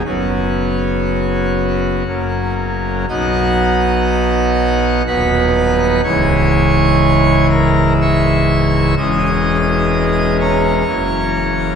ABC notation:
X:1
M:3/4
L:1/8
Q:1/4=62
K:B
V:1 name="Pipe organ"
F4- F z | [Fdf]4 [Bfb]2 | [cgc']3 [Aa] [ec'e']2 | [dd']3 [cac']3 |]
V:2 name="Pipe organ" clef=bass
[F,,,F,,F,B,C]4 [F,,,F,,F,A,C]2 | [B,,,B,,F,B,D]4 [D,,,D,,F,B,D]2 | [C,,,C,,E,G,E]6 | [E,,,E,,E,G,C]4 [F,,,F,,E,A,C]2 |]